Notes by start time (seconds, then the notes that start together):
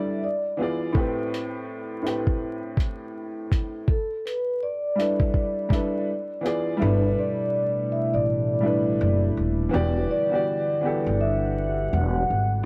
Already playing: G3 D4 E4 A4 B4 D5 E5
0.24 D5
0.57 E3 B3 F4
0.61 G#4 D5
0.92 A2 A3 C4, kick
0.97 G4 B4
1.34 closed hi-hat
2.02 A2 A3 C4
2.06 G4 B4, closed hi-hat
2.27 kick
2.77 kick, closed hi-hat
3.52 kick, closed hi-hat
3.88 A4, kick
4.25 B4, closed hi-hat
4.63 D5
4.95 G3 D4 E4
5.00 A4 B4, closed hi-hat
5.20 kick
5.34 kick
5.69 G3 D4 E4, kick
5.73 A4 B4, closed hi-hat
6.41 E3 B3 F4
6.45 G#4 D5, closed hi-hat
6.77 G3 A3 D4 E4
6.81 G1 B2 E4 A4 B4
7.19 D5
7.92 E5
8.14 A1 D5
8.60 G3 D4 E4
8.65 A4 B4
9.01 F#1
9.37 D#1
9.69 E3 B3 F#4
9.74 E1 D3 G3 G4 B4 D5 F#5
10.11 D5
10.29 E3 B3 F#4
10.33 G4 D5
10.81 E3 B3 F#4
10.85 G4 A4
11.06 G1
11.21 E5
11.93 E1 F#5
12.30 G#1